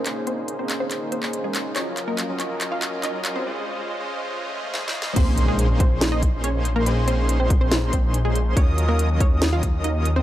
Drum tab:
CC |------------------------------------------------|------------------------------------------------|------------------------------------------------|x-----------------------------------------------|
HH |x-----x-----x-----x-----x-----x-----x-----x-----|x-----x-----x-----x-----x-----x-----x-----x-----|------------------------------------------------|x-----x-----x-----x-----x-----x-----x-----x-----|
CP |x-----------------x-----x--------x--------x-----|x-----x-----x-----x-----x-----x-----x-----x-----|------------------------------------------------|------------------------------------------------|
SD |------------------------------------------------|------------------------------------------------|------------------------------------o---o---o---|------------------------o-----------------------|
BD |------------------------------------------------|------------------------------------------------|------------------------------------------------|o-----------------o-----------o-----------------|

CC |------------------------------------------------|------------------------------------------------|
HH |x-----x-----x-----x-----x-----x-----x-----x-----|x-----x-----x-----x-----x-----x-----x-----x-----|
CP |------------------------------------------------|------------------------------------------------|
SD |------------------------o-----------------------|------------------------o-----------------------|
BD |------------------o-----------o-----------------|o-----------------o-----------o-----------------|